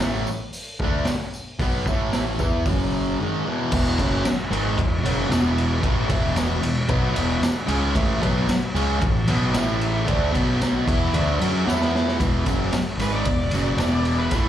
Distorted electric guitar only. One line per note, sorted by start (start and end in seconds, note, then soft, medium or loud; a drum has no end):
0.01 0.27 A2 medium
0.01 0.27 E3 loud
0.01 0.28 A3 loud
0.29 muted distorted electric guitar stroke medium
0.82 1.07 D3 medium
0.82 1.07 A3 medium
0.82 1.08 D4 loud
1.59 1.85 B2 loud
1.59 1.86 F#3 medium
1.59 1.87 B3 loud
1.88 2.40 A2 medium
1.88 2.39 E3 medium
1.88 2.41 A3 medium
2.40 2.66 E3 medium
2.40 2.66 B3 medium
2.40 2.66 E4 loud
2.67 3.18 F#2 medium
2.67 3.19 C#3 loud
2.67 3.19 F#3 loud
3.20 3.45 G#2 medium
3.20 3.46 D#3 medium
3.20 3.46 G#3 loud
3.46 3.71 E2 medium
3.46 3.72 B2 medium
3.46 3.72 E3 loud
3.73 3.98 E2 loud
3.73 3.99 B2 loud
3.73 3.99 E3 loud
4.00 4.25 F#2 medium
4.00 4.25 C#3 medium
4.00 4.26 F#3 loud
4.28 muted distorted electric guitar stroke medium
4.51 4.77 G#2 loud
4.51 4.77 D#3 medium
4.51 4.78 G#3 loud
4.79 4.99 E2 medium
4.79 4.99 B2 medium
5.04 5.28 F#2 medium
5.04 5.29 C#3 loud
5.04 5.30 F#3 loud
5.29 5.82 E2 medium
5.29 5.80 B2 medium
5.29 5.80 E3 loud
5.81 6.08 A2 loud
5.81 6.08 E3 loud
5.81 6.09 A3 loud
6.08 6.61 E2 medium
6.08 6.61 B2 medium
6.08 6.61 E3 loud
6.62 6.84 E2 medium
6.62 6.84 B2 medium
6.88 7.14 B2 loud
6.88 7.15 F#3 loud
6.88 7.15 B3 loud
7.15 7.41 E2 loud
7.15 7.41 B2 loud
7.15 7.41 E3 loud
7.42 muted distorted electric guitar stroke medium
7.66 7.93 C#3 medium
7.66 7.93 G#3 medium
7.66 7.94 C#4 loud
7.94 8.19 A2 loud
7.94 8.21 E3 loud
7.94 8.21 A3 loud
8.20 8.46 B2 medium
8.20 8.47 F#3 loud
8.20 8.47 B3 medium
8.49 muted distorted electric guitar stroke medium
8.75 8.99 C#3 loud
8.75 9.00 G#3 loud
8.75 9.01 C#4 loud
9.00 9.21 A2 medium
9.00 9.22 E3 medium
9.27 9.53 B2 loud
9.27 9.53 F#3 loud
9.27 9.54 B3 loud
9.54 10.05 A2 medium
9.54 10.06 E3 medium
9.54 10.05 A3 loud
10.05 10.31 D3 loud
10.05 10.32 A3 loud
10.05 10.33 D4 loud
10.32 10.85 B2 medium
10.32 10.85 F#3 medium
10.32 10.86 B3 loud
10.87 11.12 E3 medium
10.87 11.13 B3 loud
10.87 11.13 E4 loud
11.14 11.39 D3 loud
11.14 11.40 A3 loud
11.14 11.40 D4 loud
11.40 11.66 F#3 loud
11.40 11.66 C#4 loud
11.40 11.66 F#4 loud
11.66 12.18 E3 medium
11.66 12.19 B3 medium
11.66 12.19 E4 loud
12.19 12.45 E2 medium
12.19 12.45 B2 medium
12.19 12.46 E3 loud
12.45 12.71 F#2 loud
12.45 12.72 C#3 medium
12.45 12.72 F#3 medium
12.74 muted distorted electric guitar stroke medium
12.99 13.25 G#2 medium
12.99 13.25 D#3 medium
12.99 13.26 G#3 loud
13.27 13.48 E2 medium
13.27 13.48 B2 medium
13.53 13.79 F#2 medium
13.53 13.80 C#3 loud
13.53 13.80 F#3 medium
13.80 14.32 E2 medium
13.80 14.32 B2 medium
13.80 14.33 E3 medium
14.33 14.49 A2 loud
14.33 14.49 E3 loud
14.33 14.49 A3 loud